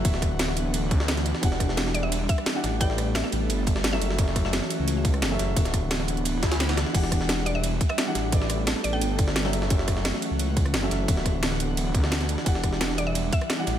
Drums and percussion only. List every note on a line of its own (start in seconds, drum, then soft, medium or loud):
0.05 kick loud
0.05 closed hi-hat medium
0.05 ride medium
0.14 snare soft
0.22 kick medium
0.22 cross-stick soft
0.22 closed hi-hat medium
0.22 ride medium
0.39 snare loud
0.39 closed hi-hat medium
0.39 ride medium
0.48 snare soft
0.57 closed hi-hat medium
0.57 ride medium
0.74 closed hi-hat medium
0.74 ride medium
0.91 kick loud
0.91 closed hi-hat medium
0.91 ride medium
1.00 snare medium
1.08 snare loud
1.08 closed hi-hat medium
1.08 ride medium
1.17 snare medium
1.17 closed hi-hat soft
1.26 closed hi-hat medium
1.26 ride medium
1.35 snare soft
1.43 kick loud
1.43 closed hi-hat medium
1.43 ride medium
1.52 snare soft
1.60 kick medium
1.60 cross-stick soft
1.60 closed hi-hat medium
1.60 ride medium
1.69 snare soft
1.77 snare loud
1.77 closed hi-hat medium
1.77 ride medium
1.87 snare soft
1.95 closed hi-hat medium
1.95 ride medium
2.12 closed hi-hat medium
2.12 ride medium
2.29 kick loud
2.29 closed hi-hat medium
2.29 ride medium
2.38 cross-stick medium
2.38 ride soft
2.46 snare loud
2.46 closed hi-hat medium
2.46 ride medium
2.64 snare soft
2.64 closed hi-hat medium
2.64 ride medium
2.81 kick loud
2.81 closed hi-hat loud
2.81 ride medium
2.90 snare soft
2.98 cross-stick soft
2.98 closed hi-hat medium
2.98 ride medium
3.15 snare loud
3.15 closed hi-hat medium
3.15 ride medium
3.24 snare soft
3.32 closed hi-hat medium
3.32 ride medium
3.50 closed hi-hat medium
3.50 ride medium
3.67 kick loud
3.67 closed hi-hat medium
3.67 ride medium
3.76 snare medium
3.84 snare loud
3.84 closed hi-hat medium
3.84 ride medium
3.93 snare medium
4.02 closed hi-hat medium
4.02 ride medium
4.10 snare soft
4.19 kick loud
4.19 closed hi-hat medium
4.19 ride medium
4.28 snare soft
4.36 kick medium
4.36 cross-stick soft
4.36 closed hi-hat medium
4.36 ride medium
4.45 snare soft
4.53 snare loud
4.53 closed hi-hat medium
4.53 ride medium
4.62 snare soft
4.70 closed hi-hat medium
4.70 ride medium
4.88 closed hi-hat loud
4.88 ride loud
5.05 kick loud
5.05 closed hi-hat medium
5.05 ride medium
5.14 cross-stick medium
5.14 ride soft
5.22 snare loud
5.22 closed hi-hat medium
5.22 ride medium
5.39 snare soft
5.39 closed hi-hat medium
5.39 ride medium
5.56 kick loud
5.56 closed hi-hat loud
5.56 ride medium
5.65 snare soft
5.65 closed hi-hat soft
5.74 kick medium
5.74 cross-stick soft
5.74 closed hi-hat medium
5.74 ride medium
5.91 snare loud
5.91 closed hi-hat medium
5.91 ride medium
6.00 cross-stick soft
6.00 snare soft
6.08 closed hi-hat medium
6.08 ride medium
6.17 closed hi-hat soft
6.25 closed hi-hat loud
6.25 ride medium
6.43 kick loud
6.43 snare loud
6.43 closed hi-hat medium
6.43 ride medium
6.52 snare loud
6.52 closed hi-hat soft
6.52 ride medium
6.60 snare loud
6.60 closed hi-hat loud
6.60 ride medium
6.69 snare loud
6.69 ride medium
6.77 snare loud
6.77 closed hi-hat medium
6.77 ride medium
6.86 snare medium
6.95 kick loud
6.95 closed hi-hat loud
6.95 crash medium
6.95 ride medium
7.04 snare soft
7.12 kick medium
7.12 cross-stick soft
7.12 closed hi-hat medium
7.12 ride medium
7.21 snare soft
7.29 snare loud
7.29 closed hi-hat loud
7.29 ride medium
7.38 snare soft
7.46 closed hi-hat medium
7.46 ride medium
7.63 closed hi-hat loud
7.63 ride medium
7.81 kick loud
7.81 closed hi-hat medium
7.81 ride medium
7.90 cross-stick medium
7.90 ride soft
7.98 snare loud
7.98 closed hi-hat loud
7.98 ride medium
8.15 snare soft
8.15 closed hi-hat medium
8.15 ride medium
8.32 kick loud
8.32 closed hi-hat medium
8.32 ride medium
8.42 snare soft
8.50 cross-stick medium
8.50 closed hi-hat medium
8.50 ride medium
8.67 snare loud
8.67 closed hi-hat medium
8.67 ride medium
8.76 snare soft
8.84 closed hi-hat medium
8.84 ride medium
9.01 closed hi-hat medium
9.01 ride medium
9.19 kick loud
9.19 closed hi-hat medium
9.19 ride medium
9.28 snare medium
9.36 snare loud
9.36 closed hi-hat medium
9.36 ride medium
9.45 snare medium
9.53 closed hi-hat medium
9.53 ride medium
9.62 snare medium
9.70 kick loud
9.70 closed hi-hat medium
9.70 ride medium
9.79 snare soft
9.88 kick medium
9.88 cross-stick soft
9.88 closed hi-hat medium
9.88 ride medium
9.97 snare soft
10.05 snare loud
10.05 closed hi-hat medium
10.05 ride medium
10.14 snare soft
10.22 closed hi-hat medium
10.22 ride medium
10.39 closed hi-hat medium
10.39 ride medium
10.57 kick loud
10.57 closed hi-hat medium
10.57 ride medium
10.65 cross-stick medium
10.65 ride soft
10.74 snare loud
10.74 closed hi-hat medium
10.74 ride medium
10.91 snare soft
10.91 closed hi-hat medium
10.91 ride medium
11.08 kick loud
11.08 closed hi-hat medium
11.08 ride medium
11.17 snare soft
11.26 kick medium
11.26 cross-stick soft
11.26 closed hi-hat medium
11.26 ride medium
11.43 snare loud
11.43 closed hi-hat medium
11.43 ride medium
11.52 snare soft
11.60 closed hi-hat medium
11.60 ride medium
11.77 closed hi-hat medium
11.77 ride medium
11.95 kick loud
11.95 closed hi-hat medium
11.95 ride medium
12.04 snare medium
12.12 snare loud
12.12 closed hi-hat medium
12.12 ride medium
12.21 snare medium
12.21 closed hi-hat soft
12.29 closed hi-hat medium
12.29 ride medium
12.38 snare medium
12.46 kick loud
12.46 closed hi-hat medium
12.46 ride medium
12.55 snare soft
12.63 kick medium
12.63 cross-stick soft
12.63 closed hi-hat medium
12.63 ride medium
12.73 snare soft
12.81 snare loud
12.81 closed hi-hat medium
12.81 ride medium
12.90 snare soft
12.98 closed hi-hat medium
12.98 ride medium
13.15 closed hi-hat medium
13.15 ride medium
13.33 kick loud
13.33 closed hi-hat medium
13.33 ride medium
13.41 cross-stick medium
13.41 ride soft
13.50 snare loud
13.50 closed hi-hat medium
13.50 ride medium
13.67 snare soft
13.67 closed hi-hat medium
13.67 ride medium